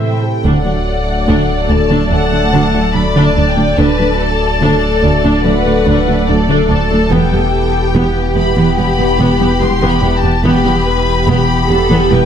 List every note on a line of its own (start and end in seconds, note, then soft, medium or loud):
0.00 0.21 A2 soft
0.00 0.45 C3 medium
0.00 0.41 E3 medium
0.00 0.41 E4 medium
0.00 0.44 A4 medium
0.00 0.21 C5 soft
0.00 0.21 E5 soft
0.00 0.42 G5 soft
0.24 0.36 A4 medium
0.44 3.74 D1 medium
0.44 0.53 D2 soft
0.44 0.57 D3 medium
0.44 3.74 F#3 medium
0.44 3.74 A3 medium
0.44 3.74 A3 soft
0.44 3.74 D4 medium
0.44 0.64 D4 soft
0.44 3.74 A4 medium
0.44 3.74 D5 soft
0.44 1.69 F#5 medium
0.65 0.73 D2 soft
0.65 0.78 F#3 soft
0.65 0.74 D4 soft
1.28 1.36 D2 medium
1.28 1.41 D3 medium
1.28 1.47 D4 medium
1.69 1.78 D2 soft
1.69 1.82 A3 medium
1.69 1.78 D4 soft
1.69 2.10 A5 medium
1.90 1.99 D2 medium
1.90 2.03 D3 medium
1.90 2.10 D4 medium
2.11 2.20 D2 soft
2.11 2.24 F#3 soft
2.11 2.19 D4 soft
2.11 2.91 F#5 medium
2.11 2.93 A5 medium
2.32 2.41 D2 soft
2.32 2.45 A3 soft
2.32 2.41 D4 soft
2.53 2.61 D2 medium
2.53 2.62 D2 medium
2.53 2.66 D3 medium
2.53 2.72 D4 medium
2.74 2.83 D2 soft
2.74 2.86 F#3 medium
2.74 2.82 D4 soft
2.94 3.03 D2 soft
2.94 3.04 D2 soft
2.94 3.07 F#3 medium
2.94 3.03 D4 soft
2.94 3.78 D5 medium
2.94 3.22 B5 medium
3.16 3.24 D2 soft
3.16 3.28 D3 medium
3.16 3.35 D4 medium
3.22 3.50 A5 medium
3.36 3.44 D2 soft
3.36 3.45 D2 soft
3.36 3.49 A3 medium
3.36 3.44 D4 soft
3.50 3.78 G5 medium
3.57 3.66 D2 soft
3.57 3.70 A3 medium
3.57 3.65 D4 medium
3.77 7.13 D1 medium
3.77 3.86 D2 medium
3.77 3.91 D3 medium
3.77 7.07 F#3 medium
3.77 7.07 A3 soft
3.77 7.07 A3 medium
3.77 3.97 D4 soft
3.77 7.07 D4 medium
3.77 7.07 A4 medium
3.77 4.20 B4 medium
3.77 7.07 D5 soft
3.77 5.44 A5 medium
3.99 4.08 D2 soft
3.99 4.12 F#3 medium
3.99 4.07 D4 soft
4.20 5.45 A4 soft
4.61 4.70 D2 soft
4.61 4.70 D2 medium
4.61 4.74 D3 medium
4.61 4.81 D4 medium
5.03 5.11 D2 soft
5.03 5.12 D2 soft
5.03 5.16 A3 medium
5.03 5.11 D4 soft
5.24 5.33 D2 medium
5.24 5.37 D3 medium
5.24 5.43 D4 medium
5.45 5.53 D2 soft
5.45 5.57 F#3 soft
5.45 5.53 D4 soft
5.45 6.26 B4 medium
5.45 6.28 F#5 medium
5.66 5.74 D2 soft
5.66 5.78 A3 medium
5.66 5.74 D4 soft
5.87 5.95 D2 medium
5.87 5.99 D3 medium
5.87 6.06 D4 medium
6.08 6.16 D2 soft
6.08 6.20 F#3 medium
6.08 6.16 D4 medium
6.27 6.36 D2 soft
6.27 6.41 F#3 medium
6.27 6.36 D4 soft
6.27 7.95 A4 soft
6.27 6.69 D5 medium
6.49 6.57 D2 medium
6.49 6.61 D3 medium
6.49 6.68 D4 medium
6.69 6.78 D2 soft
6.69 6.82 A3 medium
6.69 6.78 D4 soft
6.69 7.10 A5 medium
6.90 6.99 D2 soft
6.90 7.03 A3 medium
6.90 6.99 D4 soft
7.11 10.44 E1 medium
7.11 7.19 E1 medium
7.11 7.20 E2 medium
7.11 10.43 E3 medium
7.11 7.24 E3 medium
7.11 10.43 B3 medium
7.11 10.28 B3 medium
7.11 7.31 B3 medium
7.11 10.43 E4 medium
7.11 10.43 G4 medium
7.11 10.28 G4 medium
7.11 10.41 G4 medium
7.11 8.36 G5 medium
7.32 7.41 E2 soft
7.32 7.45 G3 soft
7.32 7.41 B3 soft
7.95 8.03 E1 medium
7.95 8.03 E2 medium
7.95 8.07 E3 medium
7.95 8.14 B3 medium
7.95 10.41 G4 medium
8.36 8.44 E1 soft
8.36 8.44 E2 soft
8.36 8.49 B3 medium
8.36 8.45 B3 soft
8.36 8.77 B5 medium
8.57 8.65 E2 medium
8.57 8.69 E3 medium
8.57 8.76 B3 soft
8.78 8.86 E1 soft
8.78 8.86 E2 soft
8.78 8.91 G3 medium
8.78 8.86 B3 soft
8.78 9.60 B5 medium
8.99 9.07 E2 soft
8.99 9.11 B3 medium
8.99 9.07 B3 soft
9.19 9.28 E1 medium
9.19 9.28 E2 medium
9.19 9.32 E3 medium
9.19 9.39 B3 medium
9.40 9.48 E2 soft
9.40 9.53 G3 medium
9.40 9.48 B3 medium
9.61 9.69 E1 soft
9.61 9.70 E2 soft
9.61 9.74 G3 soft
9.61 9.69 B3 soft
9.61 9.89 C6 medium
9.82 9.90 E2 soft
9.82 9.95 E3 medium
9.82 10.01 B3 medium
9.90 10.17 B5 medium
10.03 10.11 E1 soft
10.03 10.11 E2 soft
10.03 10.11 B3 medium
10.03 10.16 B3 medium
10.17 10.45 A5 medium
10.24 10.32 E2 soft
10.24 10.32 B3 soft
10.24 10.37 B3 medium
10.44 12.25 E1 medium
10.44 10.53 E1 medium
10.44 10.53 E2 medium
10.44 12.25 E3 medium
10.44 10.57 E3 medium
10.44 12.25 B3 medium
10.44 10.64 B3 medium
10.44 12.25 B3 medium
10.44 12.25 E4 medium
10.44 10.85 G4 medium
10.44 12.25 G4 medium
10.44 12.08 B5 medium
10.65 10.73 E2 soft
10.65 10.78 G3 medium
10.65 10.73 B3 soft
10.86 11.28 B4 medium
11.27 11.35 E1 medium
11.27 11.36 E2 medium
11.27 11.41 E3 medium
11.27 11.47 B3 medium
11.27 11.69 G4 soft
11.69 11.78 E1 soft
11.69 11.78 E2 soft
11.69 11.78 B3 soft
11.69 11.82 B3 medium
11.69 12.11 A4 medium
11.90 11.98 E2 medium
11.90 12.03 E3 medium
11.90 12.10 B3 medium
12.11 12.20 E1 soft
12.11 12.20 E2 soft
12.11 12.24 G3 medium
12.11 12.19 B3 soft
12.11 12.25 B4 medium
12.11 12.25 G5 medium